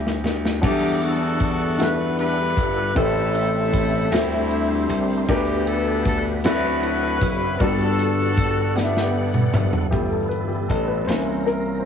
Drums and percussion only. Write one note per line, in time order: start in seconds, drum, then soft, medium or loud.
0.07 snare medium
0.26 snare medium
0.45 snare medium
0.63 kick loud
0.63 crash medium
1.02 ride soft
1.02 tambourine medium
1.40 kick medium
1.40 ride soft
1.40 tambourine medium
1.79 snare loud
1.79 ride medium
1.79 tambourine medium
2.19 ride soft
2.57 kick medium
2.57 ride soft
2.57 tambourine medium
2.96 kick medium
2.96 ride medium
3.34 ride soft
3.34 tambourine soft
3.73 kick medium
3.73 ride soft
3.73 tambourine medium
4.12 snare loud
4.12 ride medium
4.12 tambourine medium
4.51 ride soft
4.89 ride soft
4.89 tambourine medium
5.29 kick medium
5.29 ride medium
5.67 ride soft
5.67 tambourine medium
6.05 kick medium
6.05 ride soft
6.05 tambourine medium
6.44 snare loud
6.44 ride medium
6.44 tambourine medium
6.83 ride soft
7.21 kick medium
7.21 ride soft
7.21 tambourine medium
7.60 kick loud
7.60 ride medium
7.99 ride soft
7.99 tambourine medium
8.37 kick medium
8.37 ride soft
8.37 tambourine medium
8.77 snare medium
8.77 tambourine medium
8.97 snare medium
9.34 mid tom medium
9.54 mid tom loud
9.54 tambourine medium
9.73 floor tom medium
9.93 kick medium
9.93 closed hi-hat medium
10.31 closed hi-hat soft
10.31 tambourine soft
10.70 kick medium
10.70 closed hi-hat soft
10.70 tambourine medium
11.09 snare medium
11.09 closed hi-hat medium
11.09 tambourine medium
11.48 closed hi-hat soft